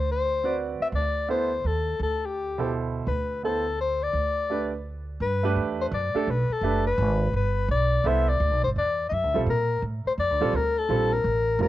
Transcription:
0.00 0.76 D2 medium
0.00 0.11 C5 medium
0.12 0.56 C5 medium
0.44 0.90 C4 medium
0.44 0.91 F#4 medium
0.44 0.91 B4 medium
0.44 0.91 D5 medium
0.80 0.88 E5 medium
0.80 muted upright bass stroke soft
0.92 1.60 D2 medium
0.92 1.27 D5 medium
1.28 1.49 B3 medium
1.28 1.49 E4 medium
1.28 1.49 A4 medium
1.28 1.50 C5 medium
1.28 1.68 C5 medium
1.64 1.97 D#2 medium
1.64 2.01 A4 medium
1.99 3.03 D2 medium
1.99 2.27 A4 medium
2.26 2.73 G4 medium
2.58 3.04 B2 medium
2.58 3.05 E4 medium
2.58 3.05 A4 medium
2.58 3.05 C5 medium
3.07 4.10 D2 medium
3.07 3.41 B4 medium
3.43 3.63 B3 soft
3.43 3.64 E4 soft
3.43 3.77 A4 medium
3.43 3.64 A4 soft
3.43 3.64 C5 medium
3.80 4.05 C5 medium
4.03 4.73 D5 medium
4.13 5.17 D2 medium
4.50 4.70 A3 medium
4.50 4.70 D4 medium
4.50 4.70 G4 soft
4.50 4.71 B4 medium
5.20 5.55 G2 medium
5.20 5.55 B4 medium
5.43 5.89 A3 medium
5.43 5.90 D4 medium
5.43 5.90 G4 medium
5.43 5.90 B4 medium
5.56 5.91 E2 medium
5.81 5.87 C5 medium
5.91 6.13 F#2 medium
5.91 6.31 D5 medium
6.14 6.26 A3 medium
6.14 6.27 D4 medium
6.14 6.27 G4 medium
6.14 6.27 A4 medium
6.14 muted upright bass stroke soft
6.27 6.48 B1 medium
6.27 6.54 B4 medium
6.49 6.86 A4 medium
6.49 muted upright bass stroke soft
6.61 6.97 F#1 medium
6.61 6.83 A3 medium
6.61 6.84 D4 medium
6.61 6.84 G4 medium
6.61 6.84 B4 medium
6.87 7.32 B4 medium
6.98 7.33 G#1 medium
7.33 7.68 G1 medium
7.33 7.68 B4 medium
7.68 8.03 B1 medium
7.68 8.09 D5 loud
8.04 8.39 C2 medium
8.04 8.25 B3 medium
8.04 8.25 E4 medium
8.04 8.26 A4 medium
8.04 8.26 C5 medium
8.04 8.30 E5 medium
8.28 8.63 D5 medium
8.40 8.51 D2 medium
8.51 8.63 B1 medium
8.63 8.75 G1 medium
8.63 8.70 C5 medium
8.76 9.11 E2 medium
8.76 9.06 D5 medium
9.09 9.24 F#2 medium
9.09 9.15 D#5 medium
9.13 9.42 E5 medium
9.24 9.35 D2 medium
9.34 9.46 B1 medium
9.34 9.46 G3 medium
9.34 9.46 C4 medium
9.34 9.47 F4 medium
9.34 9.47 A4 medium
9.46 9.81 A#2 medium
9.46 9.82 A#4 medium
9.82 10.03 A2 medium
10.06 10.13 C5 medium
10.06 muted upright bass stroke soft
10.18 10.31 F2 medium
10.18 10.57 D5 medium
10.31 10.41 D2 medium
10.41 10.52 A#1 medium
10.41 10.53 G3 medium
10.41 10.53 C4 medium
10.41 10.53 F4 medium
10.41 10.53 A4 medium
10.53 10.88 D2 medium
10.53 10.80 A#4 medium
10.78 11.14 A4 medium
10.89 11.24 A#1 medium
10.89 11.09 G3 medium
10.89 11.10 C4 medium
10.89 11.10 F4 medium
10.89 11.10 A4 medium
11.12 11.61 A#4 loud
11.24 11.58 A1 medium
11.59 11.68 F1 medium
11.59 11.68 G3 medium
11.59 11.68 C4 medium
11.59 11.68 F4 medium
11.59 11.68 A#4 medium

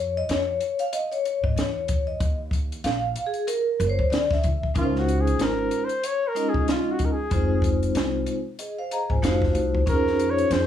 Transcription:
0.00 0.22 F2 medium
0.00 0.18 C#5 medium
0.17 0.30 D#5 medium
0.29 0.58 F2 medium
0.29 0.82 C#5 medium
0.29 snare loud
0.29 closed hi-hat medium
0.61 closed hi-hat medium
0.79 0.94 F5 medium
0.79 closed hi-hat medium
0.93 1.12 D#5 loud
0.93 closed hi-hat loud
1.12 1.41 C#5 medium
1.12 closed hi-hat soft
1.25 closed hi-hat medium
1.44 1.55 G#2 medium
1.44 1.57 D#5 medium
1.44 kick medium
1.56 2.13 E2 medium
1.56 2.09 C#5 medium
1.56 snare loud
1.56 closed hi-hat loud
1.88 kick loud
1.88 closed hi-hat medium
2.07 2.37 D#5 medium
2.20 2.77 D#2 loud
2.20 kick loud
2.20 closed hi-hat medium
2.51 kick medium
2.51 closed hi-hat medium
2.72 closed hi-hat medium
2.84 3.13 A#1 medium
2.84 3.28 F5 loud
2.84 snare loud
2.84 closed hi-hat medium
3.16 closed hi-hat medium
3.26 3.47 G#4 medium
3.34 closed hi-hat soft
3.47 3.83 A#4 loud
3.47 closed hi-hat loud
3.80 3.97 F#1 loud
3.80 closed hi-hat medium
3.87 4.12 C5 medium
3.87 3.91 C#5 medium
3.99 4.11 F#2 medium
3.99 kick medium
4.10 4.46 D3 loud
4.10 4.31 D5 medium
4.10 snare loud
4.10 closed hi-hat medium
4.31 4.72 E5 medium
4.31 kick loud
4.31 snare soft
4.44 4.73 D2 medium
4.44 kick loud
4.44 closed hi-hat medium
4.63 kick medium
4.74 5.39 C#2 loud
4.74 5.78 G#3 medium
4.74 5.78 C#4 medium
4.74 5.78 D#4 medium
4.74 5.79 F4 medium
4.74 5.00 F4 medium
4.74 4.84 A#4 medium
4.74 kick loud
4.74 closed hi-hat medium
4.83 5.82 C5 medium
4.96 5.22 F#4 medium
4.96 snare soft
5.09 closed hi-hat medium
5.21 5.43 G#4 loud
5.27 closed hi-hat medium
5.39 5.68 G#1 medium
5.39 5.86 A#4 medium
5.39 snare loud
5.39 closed hi-hat medium
5.71 closed hi-hat medium
5.85 6.07 C5 medium
5.89 closed hi-hat soft
6.04 6.29 C#5 medium
6.04 closed hi-hat loud
6.28 6.51 A#4 loud
6.35 7.13 G#3 medium
6.35 7.14 C#4 medium
6.35 7.14 D#4 medium
6.35 7.14 F4 medium
6.35 7.14 D#5 medium
6.35 closed hi-hat medium
6.49 6.69 G#4 medium
6.54 6.66 C2 medium
6.54 kick medium
6.68 6.93 F4 medium
6.68 snare medium
6.68 closed hi-hat medium
6.91 7.07 F#4 medium
6.99 kick medium
6.99 closed hi-hat medium
7.05 7.13 A#4 medium
7.12 7.75 G#4 medium
7.30 7.88 F1 loud
7.30 8.33 G#3 medium
7.30 8.34 C4 medium
7.30 8.34 D#4 medium
7.30 8.34 F4 medium
7.30 8.35 C5 medium
7.30 kick loud
7.30 closed hi-hat medium
7.62 kick loud
7.62 closed hi-hat medium
7.83 closed hi-hat medium
7.95 8.23 C2 medium
7.95 snare loud
7.95 closed hi-hat medium
8.26 closed hi-hat medium
8.59 8.77 G#4 medium
8.59 8.77 D#5 medium
8.59 closed hi-hat medium
8.79 8.91 C5 medium
8.79 8.91 F5 medium
8.91 9.10 G#4 medium
8.91 9.10 D#5 medium
8.91 9.09 A#5 medium
8.91 closed hi-hat medium
9.10 9.21 G#1 medium
9.10 9.22 F4 soft
9.10 9.23 C5 medium
9.10 9.23 G#5 medium
9.10 kick medium
9.22 9.51 F1 loud
9.22 9.76 A3 medium
9.22 9.76 D#4 medium
9.22 9.76 F4 medium
9.22 9.77 F#4 medium
9.22 9.54 C5 loud
9.22 9.53 F5 medium
9.22 snare loud
9.22 closed hi-hat medium
9.42 kick loud
9.42 snare soft
9.55 9.83 C2 loud
9.55 9.85 C5 medium
9.55 closed hi-hat medium
9.75 kick medium
9.86 10.43 F2 loud
9.86 10.67 C#4 medium
9.86 10.67 D#4 medium
9.86 10.67 F4 medium
9.86 10.67 G#4 medium
9.86 9.95 A#4 medium
9.86 10.32 A#4 loud
9.86 kick loud
9.86 closed hi-hat medium
9.95 10.67 C5 medium
10.07 snare soft
10.19 closed hi-hat medium
10.30 10.54 C#5 loud
10.38 closed hi-hat medium
10.50 10.67 F2 loud
10.50 10.67 C5 medium
10.50 snare loud
10.50 closed hi-hat medium

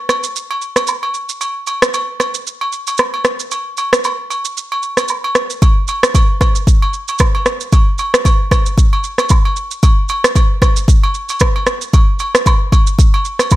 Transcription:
0.09 cross-stick medium
0.09 high agogo medium
0.09 shaker medium
0.24 shaker medium
0.36 shaker medium
0.51 high agogo medium
0.62 shaker soft
0.76 cross-stick medium
0.76 high agogo medium
0.76 shaker medium
0.87 low woodblock medium
0.87 shaker medium
1.03 high agogo medium
1.14 shaker soft
1.29 shaker medium
1.41 high agogo medium
1.41 shaker medium
1.67 high agogo medium
1.67 shaker medium
1.82 cross-stick loud
1.82 shaker medium
1.94 high agogo medium
1.94 shaker medium
2.20 cross-stick medium
2.20 high agogo medium
2.20 shaker medium
2.34 shaker medium
2.47 shaker medium
2.61 high agogo medium
2.72 shaker soft
2.87 high agogo medium
2.87 shaker medium
2.98 cross-stick medium
2.98 low woodblock medium
2.98 shaker medium
3.14 high agogo medium
3.25 cross-stick loud
3.25 shaker soft
3.39 shaker medium
3.51 high agogo medium
3.51 shaker medium
3.77 high agogo medium
3.77 shaker medium
3.93 cross-stick loud
3.93 shaker medium
4.04 high agogo medium
4.04 low woodblock medium
4.04 shaker medium
4.30 high agogo medium
4.30 shaker medium
4.45 shaker medium
4.57 shaker medium
4.72 high agogo medium
4.83 shaker soft
4.97 cross-stick medium
4.97 high agogo medium
4.97 shaker medium
5.08 low woodblock medium
5.08 shaker medium
5.24 high agogo medium
5.35 cross-stick loud
5.35 shaker soft
5.50 shaker medium
5.62 kick loud
5.62 high agogo medium
5.62 shaker medium
5.88 high agogo medium
5.88 shaker medium
6.03 cross-stick loud
6.03 shaker medium
6.15 kick medium
6.15 high agogo medium
6.15 shaker medium
6.41 kick medium
6.41 cross-stick medium
6.41 high agogo medium
6.41 shaker medium
6.55 shaker medium
6.67 kick loud
6.67 shaker medium
6.82 high agogo medium
6.93 shaker soft
7.08 high agogo medium
7.08 shaker medium
7.19 kick medium
7.19 cross-stick medium
7.19 low woodblock medium
7.19 shaker medium
7.35 high agogo medium
7.46 cross-stick loud
7.46 shaker soft
7.61 shaker medium
7.72 kick loud
7.72 high agogo medium
7.72 shaker medium
7.98 high agogo medium
7.98 shaker medium
8.14 cross-stick loud
8.14 shaker medium
8.25 kick medium
8.25 high agogo medium
8.25 shaker medium
8.51 kick loud
8.51 cross-stick medium
8.51 high agogo medium
8.51 shaker medium
8.66 shaker medium
8.78 kick loud
8.78 shaker medium
8.93 high agogo medium
9.04 shaker soft
9.18 cross-stick medium
9.18 high agogo medium
9.18 shaker medium
9.29 kick loud
9.29 low woodblock medium
9.29 shaker medium
9.45 high agogo medium
9.56 shaker soft
9.71 shaker medium
9.83 kick loud
9.83 high agogo medium
9.83 shaker medium
10.09 high agogo medium
10.09 shaker medium
10.24 cross-stick loud
10.24 shaker medium
10.35 kick medium
10.35 high agogo medium
10.35 shaker medium
10.62 kick medium
10.62 cross-stick medium
10.62 high agogo medium
10.62 shaker medium
10.76 shaker medium
10.88 kick loud
10.88 shaker medium
11.04 high agogo medium
11.14 shaker soft
11.29 high agogo medium
11.29 shaker medium
11.40 kick medium
11.40 cross-stick loud
11.40 low woodblock medium
11.40 shaker medium
11.56 high agogo medium
11.67 cross-stick loud
11.67 shaker soft
11.81 shaker medium
11.93 kick loud
11.93 high agogo medium
11.93 shaker medium
12.19 high agogo medium
12.19 shaker medium
12.35 cross-stick loud
12.35 shaker medium
12.46 kick medium
12.46 high agogo medium
12.46 low woodblock medium
12.46 shaker medium
12.72 kick medium
12.72 high agogo medium
12.72 shaker medium
12.87 shaker medium
12.99 kick loud
12.99 shaker medium
13.14 high agogo medium
13.25 shaker soft
13.39 cross-stick medium
13.39 high agogo medium
13.39 shaker medium
13.50 kick medium
13.50 low woodblock medium
13.50 shaker medium

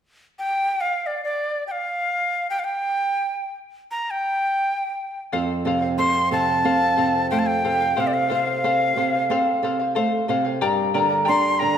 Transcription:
0.39 0.82 G5 medium
0.81 1.08 F5 medium
1.06 1.23 D5 medium
1.24 1.64 D5 medium
1.67 1.73 G5 medium
1.71 2.49 F5 medium
2.50 2.61 G5 medium
2.59 2.66 F5 medium
2.64 3.53 G5 medium
3.91 4.12 A#5 medium
4.10 5.20 G5 medium
5.32 7.93 F2 medium
5.32 5.64 A4 medium
5.32 5.66 C5 medium
5.32 5.66 F5 medium
5.65 5.98 C3 soft
5.65 5.83 A4 medium
5.65 5.82 C5 medium
5.65 5.81 F5 medium
5.82 5.97 C5 soft
5.82 5.98 F5 medium
5.98 6.31 C4 medium
5.98 6.30 A4 medium
5.98 6.31 C5 medium
5.98 6.32 F5 medium
5.98 6.30 C6 medium
6.31 6.64 C3 soft
6.31 6.48 A4 soft
6.31 6.47 C5 medium
6.31 6.46 F5 medium
6.31 7.28 A5 medium
6.48 6.64 C5 soft
6.48 6.64 F5 soft
6.65 6.97 C4 medium
6.65 6.96 A4 medium
6.65 6.96 C5 medium
6.65 6.97 F5 medium
6.97 7.30 C3 soft
6.97 7.14 A4 medium
6.97 7.14 C5 medium
6.97 7.13 F5 medium
7.14 7.30 C5 soft
7.14 7.31 F5 soft
7.31 7.64 A3 soft
7.31 7.63 A4 medium
7.31 7.63 C5 medium
7.31 7.64 F5 medium
7.31 7.41 G5 medium
7.39 7.48 A5 medium
7.46 8.02 G5 medium
7.64 7.97 C3 soft
7.64 7.81 A4 soft
7.64 7.80 C5 medium
7.64 7.79 F5 medium
7.81 7.95 C5 soft
7.81 7.96 F5 soft
7.96 8.95 C3 medium
7.96 8.27 A4 medium
7.96 8.28 C5 medium
7.96 8.29 F5 medium
7.96 8.09 F5 medium
8.07 8.15 D5 medium
8.14 8.32 F5 medium
8.29 8.46 A4 medium
8.29 8.46 C5 medium
8.29 8.63 C5 soft
8.29 8.45 F5 medium
8.34 9.60 F5 medium
8.47 8.63 C5 soft
8.47 8.63 F5 soft
8.64 8.96 C4 soft
8.64 8.96 A4 medium
8.64 8.96 C5 medium
8.64 8.97 F5 medium
8.96 9.28 C3 soft
8.96 9.13 A4 medium
8.96 9.13 C5 medium
8.96 9.12 F5 medium
9.13 9.30 C5 soft
9.13 9.30 F5 soft
9.30 9.62 C4 soft
9.30 9.62 A4 medium
9.30 9.63 C5 medium
9.30 9.63 F5 medium
9.63 9.95 C3 soft
9.63 9.79 A4 medium
9.63 9.79 C5 medium
9.63 9.78 F5 medium
9.79 9.95 C5 soft
9.79 9.95 F5 soft
9.95 10.28 A3 soft
9.95 10.27 A4 medium
9.95 10.28 C5 medium
9.95 10.29 F5 medium
10.28 10.61 C3 medium
10.28 10.45 A4 medium
10.28 10.44 C5 medium
10.28 10.43 F5 medium
10.45 10.61 C5 soft
10.45 10.61 F5 medium
10.61 11.78 G2 medium
10.61 10.94 G4 medium
10.61 10.93 A#4 medium
10.61 10.93 D5 medium
10.61 10.93 G5 medium
10.61 10.94 A#5 medium
10.94 11.27 D3 soft
10.94 11.10 A#4 medium
10.94 11.09 D5 medium
10.94 11.11 G5 medium
10.94 11.08 A#5 medium
11.09 11.25 A#4 soft
11.09 11.25 D5 soft
11.09 11.25 A#5 soft
11.25 11.59 G4 medium
11.25 11.59 A#4 medium
11.25 11.59 D5 medium
11.25 11.58 G5 medium
11.25 11.60 A#5 medium
11.25 11.61 C6 medium
11.29 11.60 D4 medium
11.59 11.78 D3 medium
11.59 11.75 A#4 soft
11.59 11.75 D5 medium
11.59 11.76 G5 medium
11.59 11.78 A#5 medium
11.59 11.73 A#5 medium
11.75 11.78 A#5 soft

